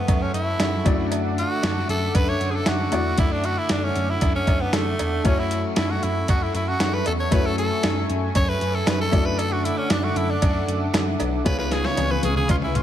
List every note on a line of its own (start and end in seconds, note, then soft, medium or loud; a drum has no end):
0.00 0.87 G#3 medium
0.00 0.83 A3 medium
0.00 0.24 B3 medium
0.00 0.82 E4 medium
0.00 0.82 F#4 medium
0.00 5.21 A4 medium
0.00 0.83 C#5 medium
0.00 11.42 E5 medium
0.00 7.28 F#5 medium
0.00 0.82 C#6 medium
0.08 0.86 F#2 medium
0.08 0.27 F#2 loud
0.08 0.86 C#3 medium
0.08 0.86 F#3 medium
0.08 kick medium
0.08 closed hi-hat medium
0.08 cowbell medium
0.22 0.34 C#4 medium
0.34 0.53 F#2 medium
0.34 1.08 E4 medium
0.34 closed hi-hat medium
0.60 0.78 F#2 medium
0.60 snare loud
0.60 closed hi-hat medium
0.60 cowbell medium
0.85 1.42 F#2 medium
0.85 1.62 D3 medium
0.85 2.88 A3 medium
0.85 1.64 A3 medium
0.85 1.63 D4 medium
0.85 2.88 E4 medium
0.85 2.89 F#4 medium
0.85 2.89 D5 medium
0.85 5.21 D6 medium
0.85 kick loud
0.85 closed hi-hat medium
0.85 cowbell medium
1.11 closed hi-hat medium
1.11 cowbell medium
1.38 1.86 F#4 loud
1.38 closed hi-hat medium
1.63 1.81 F#2 loud
1.63 2.13 D3 medium
1.63 2.15 A3 medium
1.63 2.16 D4 medium
1.63 snare loud
1.63 closed hi-hat medium
1.63 cowbell medium
1.89 2.08 F#2 loud
1.89 2.17 A4 loud
1.89 closed hi-hat medium
2.14 2.33 F#2 loud
2.14 3.16 D3 medium
2.14 3.19 A3 medium
2.14 3.19 D4 medium
2.14 2.30 B4 loud
2.14 kick medium
2.14 closed hi-hat medium
2.14 cowbell medium
2.29 2.52 C#5 loud
2.41 2.59 F#2 medium
2.41 closed hi-hat medium
2.51 2.56 G#4 medium
2.55 2.69 A4 loud
2.66 2.85 F#2 medium
2.66 3.19 F#4 medium
2.66 snare loud
2.66 closed hi-hat medium
2.66 cowbell medium
2.91 3.11 E2 medium
2.91 4.95 A3 medium
2.91 4.95 E4 medium
2.91 4.96 F#4 medium
2.91 4.96 D5 medium
2.91 closed hi-hat medium
2.91 cowbell medium
3.17 3.56 F#2 medium
3.17 4.19 D3 medium
3.17 4.22 A3 medium
3.17 4.22 D4 medium
3.17 3.33 E4 loud
3.17 kick loud
3.17 closed hi-hat medium
3.17 cowbell medium
3.32 3.47 D4 medium
3.44 3.60 F#4 medium
3.44 closed hi-hat medium
3.58 3.72 E4 medium
3.69 3.89 F#2 medium
3.69 3.85 D4 medium
3.69 snare loud
3.69 closed hi-hat medium
3.69 cowbell medium
3.84 4.11 C#4 medium
3.95 4.14 F#2 medium
3.95 closed hi-hat medium
4.10 4.35 E4 medium
4.20 4.40 F#2 loud
4.20 5.24 D3 medium
4.20 5.26 A3 medium
4.20 5.26 D4 medium
4.20 kick medium
4.20 closed hi-hat medium
4.20 cowbell medium
4.35 4.63 C#4 medium
4.47 4.66 F#2 medium
4.47 kick medium
4.47 closed hi-hat medium
4.47 cowbell medium
4.61 4.76 B3 medium
4.73 4.92 F#2 medium
4.73 5.27 A3 medium
4.73 snare loud
4.73 closed hi-hat medium
4.73 cowbell medium
4.99 5.18 E2 medium
4.99 closed hi-hat medium
4.99 cowbell medium
5.24 5.63 F#2 medium
5.24 6.27 F#3 medium
5.24 7.27 A3 medium
5.24 5.40 C#4 medium
5.24 6.28 C#4 medium
5.24 7.28 E4 medium
5.24 7.28 F#4 medium
5.24 6.31 F#4 medium
5.24 9.09 A4 medium
5.24 7.29 C#5 medium
5.24 9.09 C#6 medium
5.24 kick loud
5.24 closed hi-hat medium
5.24 cowbell medium
5.39 5.64 E4 medium
5.51 closed hi-hat medium
5.76 5.96 F#2 loud
5.76 5.92 E4 medium
5.76 snare loud
5.76 closed hi-hat medium
5.76 cowbell medium
5.91 6.05 F#4 medium
6.03 6.21 F#2 loud
6.03 6.29 E4 medium
6.03 closed hi-hat medium
6.28 6.47 F#2 medium
6.28 7.30 F#3 medium
6.28 7.31 C#4 medium
6.28 6.44 F#4 medium
6.28 7.33 F#4 medium
6.28 kick medium
6.28 closed hi-hat medium
6.28 cowbell medium
6.43 6.55 E4 medium
6.54 6.73 F#2 medium
6.54 6.70 E4 medium
6.54 closed hi-hat medium
6.68 6.95 F#4 medium
6.80 6.99 F#2 medium
6.80 snare loud
6.80 closed hi-hat medium
6.80 cowbell medium
6.94 7.06 B4 medium
7.06 7.25 E2 medium
7.06 7.13 A4 medium
7.06 closed hi-hat medium
7.06 cowbell medium
7.20 7.34 C#5 medium
7.31 7.69 F#2 loud
7.31 8.34 F#3 medium
7.31 9.09 A3 medium
7.31 8.34 C#4 medium
7.31 9.09 E4 medium
7.31 9.10 F#4 medium
7.31 8.36 F#4 medium
7.31 7.47 B4 loud
7.31 9.10 C#5 medium
7.31 9.11 G#5 medium
7.31 kick loud
7.31 closed hi-hat medium
7.31 cowbell medium
7.46 7.58 A4 medium
7.58 8.06 A4 medium
7.58 closed hi-hat medium
7.83 8.02 F#2 loud
7.83 snare loud
7.83 closed hi-hat medium
7.83 cowbell medium
8.09 8.28 F#2 loud
8.09 closed hi-hat medium
8.34 8.54 F#2 loud
8.34 9.13 F#3 medium
8.34 9.11 C#4 medium
8.34 11.49 F#4 medium
8.34 8.50 C#5 loud
8.34 kick medium
8.34 closed hi-hat medium
8.34 cowbell medium
8.49 8.76 B4 medium
8.61 8.80 F#2 medium
8.61 closed hi-hat medium
8.75 8.89 A4 medium
8.86 9.06 F#2 loud
8.86 9.00 B4 loud
8.86 snare loud
8.86 closed hi-hat medium
8.86 cowbell medium
9.01 9.27 A4 loud
9.11 9.69 F#2 medium
9.11 10.39 D3 medium
9.11 11.15 A3 medium
9.11 10.41 A3 medium
9.11 10.42 D4 medium
9.11 11.16 E4 medium
9.11 11.16 F#4 medium
9.11 11.43 A4 medium
9.11 11.16 D5 medium
9.11 11.43 F#5 medium
9.11 11.43 D6 medium
9.11 kick loud
9.11 closed hi-hat medium
9.11 cowbell medium
9.26 9.40 B4 medium
9.38 9.54 A4 loud
9.38 closed hi-hat medium
9.38 cowbell medium
9.52 9.66 F#4 medium
9.65 9.79 E4 medium
9.65 closed hi-hat medium
9.78 9.93 C#4 medium
9.90 10.09 F#2 loud
9.90 10.05 D4 medium
9.90 snare loud
9.90 closed hi-hat medium
9.90 cowbell medium
10.04 10.18 F#4 medium
10.16 10.35 F#2 loud
10.16 10.32 E4 medium
10.16 closed hi-hat medium
10.30 10.82 D4 medium
10.40 10.61 F#2 loud
10.40 11.45 D3 medium
10.40 11.45 A3 medium
10.40 11.46 D4 medium
10.40 kick medium
10.40 closed hi-hat medium
10.40 cowbell medium
10.68 10.87 F#2 medium
10.68 closed hi-hat medium
10.94 11.13 F#2 loud
10.94 snare loud
10.94 closed hi-hat medium
10.94 cowbell medium
11.20 11.39 B1 loud
11.20 closed hi-hat medium
11.20 cowbell medium
11.44 11.83 C#2 loud
11.44 11.96 C#3 medium
11.44 12.19 C#3 medium
11.44 11.98 G#3 medium
11.44 12.83 B3 medium
11.44 11.99 C#4 medium
11.44 12.83 F4 medium
11.44 12.83 G#4 medium
11.44 12.83 B4 medium
11.44 11.58 B4 loud
11.44 12.83 C#5 medium
11.44 12.83 F5 medium
11.44 12.83 G#5 medium
11.44 12.83 C#6 medium
11.44 kick loud
11.44 snare medium
11.44 closed hi-hat medium
11.44 cowbell medium
11.59 11.74 B4 loud
11.59 snare soft
11.71 11.87 G#4 medium
11.71 snare medium
11.71 closed hi-hat medium
11.85 12.13 C#5 loud
11.85 snare medium
11.97 12.16 C#2 medium
11.97 12.48 C#3 medium
11.97 12.49 G#3 medium
11.97 12.50 C#4 medium
11.97 closed hi-hat medium
11.97 high tom medium
11.97 cowbell medium
12.11 12.24 B4 loud
12.11 high tom medium
12.23 12.42 C#2 medium
12.23 12.36 G#4 medium
12.23 closed hi-hat medium
12.23 high tom medium
12.36 12.49 G#4 medium
12.36 mid tom medium
12.49 12.68 C#2 loud
12.49 12.83 C#3 medium
12.49 12.83 G#3 medium
12.49 12.83 C#4 medium
12.49 12.56 F4 medium
12.49 kick medium
12.49 closed hi-hat medium
12.49 mid tom medium
12.49 cowbell medium
12.62 12.78 E4 medium
12.62 mid tom medium
12.75 12.83 C#2 loud
12.75 12.83 F4 medium
12.75 closed hi-hat medium
12.75 mid tom medium